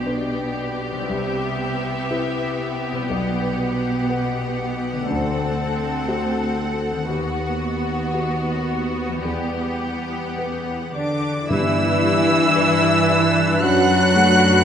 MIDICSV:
0, 0, Header, 1, 13, 480
1, 0, Start_track
1, 0, Key_signature, 1, "major"
1, 0, Tempo, 1016949
1, 994, Tempo, 996678
1, 1474, Time_signature, 4, 2, 24, 8
1, 3394, Tempo, 1052632
1, 3874, Tempo, 1121495
1, 5314, Tempo, 1060071
1, 6733, End_track
2, 0, Start_track
2, 0, Title_t, "Violin section"
2, 0, Program_c, 0, 48
2, 0, Note_on_c, 0, 74, 44
2, 517, Note_off_c, 0, 74, 0
2, 523, Note_on_c, 0, 76, 52
2, 1475, Note_on_c, 0, 78, 58
2, 1476, Note_off_c, 0, 76, 0
2, 4333, Note_off_c, 0, 78, 0
2, 4347, Note_on_c, 0, 78, 43
2, 5060, Note_off_c, 0, 78, 0
2, 5077, Note_on_c, 0, 86, 61
2, 5298, Note_off_c, 0, 86, 0
2, 5316, Note_on_c, 0, 88, 89
2, 6272, Note_on_c, 0, 90, 97
2, 6276, Note_off_c, 0, 88, 0
2, 6733, Note_off_c, 0, 90, 0
2, 6733, End_track
3, 0, Start_track
3, 0, Title_t, "Flute"
3, 0, Program_c, 1, 73
3, 5071, Note_on_c, 1, 74, 49
3, 5308, Note_on_c, 1, 76, 71
3, 5314, Note_off_c, 1, 74, 0
3, 6273, Note_on_c, 1, 78, 80
3, 6280, Note_off_c, 1, 76, 0
3, 6733, Note_off_c, 1, 78, 0
3, 6733, End_track
4, 0, Start_track
4, 0, Title_t, "Oboe"
4, 0, Program_c, 2, 68
4, 5319, Note_on_c, 2, 71, 60
4, 6733, Note_off_c, 2, 71, 0
4, 6733, End_track
5, 0, Start_track
5, 0, Title_t, "Violin section"
5, 0, Program_c, 3, 48
5, 0, Note_on_c, 3, 67, 53
5, 2434, Note_on_c, 3, 69, 50
5, 2438, Note_off_c, 3, 67, 0
5, 3373, Note_off_c, 3, 69, 0
5, 3389, Note_on_c, 3, 66, 53
5, 4331, Note_off_c, 3, 66, 0
5, 4353, Note_on_c, 3, 67, 42
5, 5227, Note_off_c, 3, 67, 0
5, 6274, Note_on_c, 3, 78, 64
5, 6733, Note_off_c, 3, 78, 0
5, 6733, End_track
6, 0, Start_track
6, 0, Title_t, "Grand piano"
6, 0, Program_c, 4, 0
6, 0, Control_c, 4, 64, 127
6, 0, Note_on_c, 4, 35, 45
6, 31, Note_on_c, 4, 62, 33
6, 31, Note_on_c, 4, 71, 37
6, 498, Note_off_c, 4, 35, 0
6, 498, Note_off_c, 4, 62, 0
6, 498, Note_off_c, 4, 71, 0
6, 515, Note_on_c, 4, 36, 49
6, 527, Control_c, 4, 64, 0
6, 604, Control_c, 4, 64, 127
6, 993, Note_on_c, 4, 64, 37
6, 994, Note_on_c, 4, 71, 42
6, 1453, Note_off_c, 4, 36, 0
6, 1454, Note_off_c, 4, 64, 0
6, 1455, Note_off_c, 4, 71, 0
6, 1471, Note_on_c, 4, 35, 50
6, 1481, Control_c, 4, 64, 0
6, 1547, Control_c, 4, 64, 127
6, 1950, Note_on_c, 4, 78, 39
6, 1953, Note_on_c, 4, 71, 43
6, 2416, Note_off_c, 4, 35, 0
6, 2417, Note_off_c, 4, 78, 0
6, 2418, Note_off_c, 4, 71, 0
6, 2433, Note_on_c, 4, 38, 52
6, 2446, Control_c, 4, 64, 0
6, 2527, Control_c, 4, 64, 127
6, 2909, Note_on_c, 4, 66, 36
6, 2910, Note_on_c, 4, 72, 40
6, 3372, Note_off_c, 4, 38, 0
6, 3374, Note_off_c, 4, 66, 0
6, 3375, Note_off_c, 4, 72, 0
6, 3395, Note_on_c, 4, 39, 46
6, 3402, Control_c, 4, 64, 0
6, 3483, Control_c, 4, 64, 127
6, 3872, Note_on_c, 4, 66, 32
6, 3873, Note_on_c, 4, 71, 31
6, 4333, Note_off_c, 4, 66, 0
6, 4333, Note_off_c, 4, 71, 0
6, 4334, Note_off_c, 4, 39, 0
6, 4347, Note_on_c, 4, 40, 41
6, 4359, Control_c, 4, 64, 0
6, 4432, Control_c, 4, 64, 127
6, 4831, Note_on_c, 4, 78, 27
6, 4833, Note_on_c, 4, 71, 30
6, 5295, Note_off_c, 4, 40, 0
6, 5295, Note_off_c, 4, 78, 0
6, 5297, Note_off_c, 4, 71, 0
6, 5312, Note_on_c, 4, 43, 55
6, 5322, Control_c, 4, 64, 0
6, 5410, Control_c, 4, 64, 127
6, 5551, Note_on_c, 4, 55, 44
6, 5789, Note_on_c, 4, 71, 50
6, 5936, Note_off_c, 4, 55, 0
6, 6034, Note_on_c, 4, 62, 44
6, 6177, Note_off_c, 4, 71, 0
6, 6256, Note_off_c, 4, 43, 0
6, 6275, Note_off_c, 4, 62, 0
6, 6276, Note_on_c, 4, 42, 58
6, 6283, Control_c, 4, 64, 0
6, 6370, Control_c, 4, 64, 127
6, 6514, Note_on_c, 4, 57, 49
6, 6733, Note_off_c, 4, 42, 0
6, 6733, Note_off_c, 4, 57, 0
6, 6733, End_track
7, 0, Start_track
7, 0, Title_t, "Clarinet"
7, 0, Program_c, 5, 71
7, 5312, Note_on_c, 5, 62, 63
7, 6733, Note_off_c, 5, 62, 0
7, 6733, End_track
8, 0, Start_track
8, 0, Title_t, "Harp"
8, 0, Program_c, 6, 46
8, 0, Note_on_c, 6, 47, 41
8, 0, Note_on_c, 6, 55, 37
8, 0, Note_on_c, 6, 62, 36
8, 0, Note_on_c, 6, 71, 35
8, 432, Note_on_c, 6, 48, 49
8, 447, Note_off_c, 6, 55, 0
8, 453, Note_on_c, 6, 55, 38
8, 475, Note_on_c, 6, 64, 41
8, 489, Note_off_c, 6, 71, 0
8, 494, Note_on_c, 6, 71, 39
8, 495, Note_off_c, 6, 47, 0
8, 516, Note_off_c, 6, 62, 0
8, 1388, Note_on_c, 6, 47, 51
8, 1405, Note_off_c, 6, 55, 0
8, 1411, Note_on_c, 6, 55, 42
8, 1432, Note_on_c, 6, 78, 41
8, 1448, Note_off_c, 6, 71, 0
8, 1449, Note_off_c, 6, 48, 0
8, 1454, Note_on_c, 6, 71, 42
8, 1471, Note_off_c, 6, 64, 0
8, 2351, Note_on_c, 6, 50, 47
8, 2373, Note_on_c, 6, 57, 41
8, 2396, Note_on_c, 6, 69, 40
8, 2413, Note_off_c, 6, 47, 0
8, 2417, Note_on_c, 6, 72, 39
8, 2424, Note_off_c, 6, 55, 0
8, 2446, Note_off_c, 6, 71, 0
8, 3308, Note_on_c, 6, 51, 44
8, 3310, Note_off_c, 6, 78, 0
8, 3370, Note_off_c, 6, 50, 0
8, 3373, Note_on_c, 6, 71, 35
8, 3381, Note_off_c, 6, 57, 0
8, 3403, Note_off_c, 6, 72, 0
8, 4205, Note_off_c, 6, 69, 0
8, 4275, Note_on_c, 6, 52, 38
8, 4293, Note_on_c, 6, 55, 31
8, 4313, Note_on_c, 6, 67, 29
8, 4328, Note_off_c, 6, 71, 0
8, 4332, Note_off_c, 6, 51, 0
8, 4333, Note_on_c, 6, 71, 31
8, 5294, Note_off_c, 6, 52, 0
8, 5313, Note_off_c, 6, 67, 0
8, 5313, Note_on_c, 6, 43, 58
8, 5427, Note_off_c, 6, 55, 0
8, 5433, Note_on_c, 6, 55, 43
8, 5557, Note_on_c, 6, 62, 47
8, 5668, Note_off_c, 6, 71, 0
8, 5674, Note_on_c, 6, 71, 44
8, 5796, Note_on_c, 6, 74, 51
8, 5916, Note_on_c, 6, 67, 51
8, 6030, Note_off_c, 6, 71, 0
8, 6035, Note_on_c, 6, 71, 48
8, 6152, Note_off_c, 6, 62, 0
8, 6157, Note_on_c, 6, 62, 49
8, 6275, Note_on_c, 6, 42, 63
8, 6294, Note_off_c, 6, 43, 0
8, 6294, Note_off_c, 6, 55, 0
8, 6296, Note_off_c, 6, 67, 0
8, 6393, Note_on_c, 6, 57, 47
8, 6508, Note_off_c, 6, 62, 0
8, 6513, Note_on_c, 6, 62, 49
8, 6629, Note_off_c, 6, 71, 0
8, 6635, Note_on_c, 6, 71, 51
8, 6733, Note_off_c, 6, 42, 0
8, 6733, Note_off_c, 6, 57, 0
8, 6733, Note_off_c, 6, 62, 0
8, 6733, Note_off_c, 6, 71, 0
8, 6733, Note_off_c, 6, 74, 0
8, 6733, End_track
9, 0, Start_track
9, 0, Title_t, "Viola section"
9, 0, Program_c, 7, 48
9, 32, Note_on_c, 7, 59, 48
9, 2436, Note_off_c, 7, 59, 0
9, 2436, Note_on_c, 7, 60, 51
9, 3387, Note_on_c, 7, 59, 52
9, 3393, Note_off_c, 7, 60, 0
9, 5073, Note_off_c, 7, 59, 0
9, 5074, Note_on_c, 7, 62, 52
9, 5296, Note_off_c, 7, 62, 0
9, 5312, Note_on_c, 7, 64, 75
9, 6274, Note_on_c, 7, 66, 79
9, 6275, Note_off_c, 7, 64, 0
9, 6733, Note_off_c, 7, 66, 0
9, 6733, End_track
10, 0, Start_track
10, 0, Title_t, "French horn section"
10, 0, Program_c, 8, 60
10, 5081, Note_on_c, 8, 50, 52
10, 5300, Note_off_c, 8, 50, 0
10, 5320, Note_on_c, 8, 52, 82
10, 6277, Note_on_c, 8, 54, 89
10, 6279, Note_off_c, 8, 52, 0
10, 6733, Note_off_c, 8, 54, 0
10, 6733, End_track
11, 0, Start_track
11, 0, Title_t, "Cello section"
11, 0, Program_c, 10, 48
11, 0, Note_on_c, 10, 47, 52
11, 499, Note_off_c, 10, 47, 0
11, 517, Note_on_c, 10, 48, 55
11, 1454, Note_off_c, 10, 48, 0
11, 1475, Note_on_c, 10, 47, 59
11, 2418, Note_off_c, 10, 47, 0
11, 2436, Note_on_c, 10, 38, 54
11, 3391, Note_on_c, 10, 39, 50
11, 3393, Note_off_c, 10, 38, 0
11, 4332, Note_off_c, 10, 39, 0
11, 4349, Note_on_c, 10, 40, 42
11, 5061, Note_off_c, 10, 40, 0
11, 5076, Note_on_c, 10, 50, 52
11, 5297, Note_off_c, 10, 50, 0
11, 5314, Note_on_c, 10, 52, 70
11, 6275, Note_on_c, 10, 54, 76
11, 6276, Note_off_c, 10, 52, 0
11, 6733, Note_off_c, 10, 54, 0
11, 6733, End_track
12, 0, Start_track
12, 0, Title_t, "Timpani"
12, 0, Program_c, 11, 47
12, 5312, Note_on_c, 11, 43, 77
12, 6015, Note_off_c, 11, 43, 0
12, 6733, End_track
13, 0, Start_track
13, 0, Title_t, "Double bass section"
13, 0, Program_c, 12, 48
13, 5311, Note_on_c, 12, 43, 59
13, 6256, Note_off_c, 12, 43, 0
13, 6273, Note_on_c, 12, 42, 67
13, 6733, Note_off_c, 12, 42, 0
13, 6733, End_track
0, 0, End_of_file